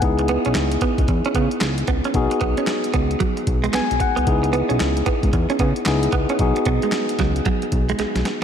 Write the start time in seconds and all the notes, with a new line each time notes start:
0.02 C#2 B3 D#4 E4 G#4, kick, closed hi-hat
0.19 muted clean electric guitar stroke, closed hi-hat
0.28 B3, closed hi-hat
0.45 B1 C#4, closed hi-hat
0.55 C#2, snare, clap, closed hi-hat
0.72 closed hi-hat
0.81 B3, kick, closed hi-hat
0.98 C#2, kick, closed hi-hat
1.08 E2, muted clean electric guitar stroke, kick, closed hi-hat
1.25 C#4, closed hi-hat
1.35 C#3 B3, kick, closed hi-hat
1.51 closed hi-hat
1.61 C#2, muted clean electric guitar stroke, snare, clap, closed hi-hat
1.78 closed hi-hat
1.87 C#2 B3, kick, closed hi-hat
2.04 C#4, closed hi-hat
2.14 B1 B3 D#4 F#4 G#4, kick, closed hi-hat
2.31 muted clean electric guitar stroke, closed hi-hat
2.41 B1 B3, kick, closed hi-hat
2.57 C#4, closed hi-hat
2.67 snare, clap, closed hi-hat
2.84 closed hi-hat
2.94 C#2 B3, kick, closed hi-hat
3.11 closed hi-hat
3.20 F#3, kick, closed hi-hat
3.37 muted clean electric guitar stroke, closed hi-hat
3.47 B1, kick, closed hi-hat
3.64 G#3, closed hi-hat
3.73 B1 B3 G#5, snare, clap, closed hi-hat
3.91 B1, closed hi-hat
4.00 F#5, muted clean electric guitar stroke, kick, closed hi-hat
4.16 C2 B3, closed hi-hat
4.26 C#2 B3 D#4 E4 G#4, kick, closed hi-hat
4.43 muted clean electric guitar stroke, closed hi-hat
4.53 B3, closed hi-hat
4.69 B1 C#4, closed hi-hat
4.80 C#2, snare, clap, closed hi-hat
4.97 closed hi-hat
5.06 B3, kick, closed hi-hat
5.23 C#2, kick, closed hi-hat
5.33 E2, muted clean electric guitar stroke, kick, closed hi-hat
5.50 C#4, closed hi-hat
5.59 C#3 B3, kick, closed hi-hat
5.76 closed hi-hat
5.86 C#2 B3 D#4 E4 G#4, muted clean electric guitar stroke, snare, clap, closed hi-hat
6.03 closed hi-hat
6.12 C#2 B3, kick, closed hi-hat
6.29 C#4, closed hi-hat
6.39 B1 B3 D#4 F#4 G#4, kick, closed hi-hat
6.56 muted clean electric guitar stroke, closed hi-hat
6.65 B1 B3, kick, closed hi-hat
6.82 G#3, closed hi-hat
6.92 snare, clap, closed hi-hat
7.09 closed hi-hat
7.19 C#2 F#3, kick, snare, closed hi-hat
7.36 closed hi-hat
7.45 F#3, kick, closed hi-hat
7.62 muted clean electric guitar stroke, closed hi-hat
7.72 B1, kick, closed hi-hat
7.89 G#3, closed hi-hat
7.99 B1 G#3, snare, closed hi-hat
8.16 B1, snare, closed hi-hat
8.25 muted clean electric guitar stroke, snare, closed hi-hat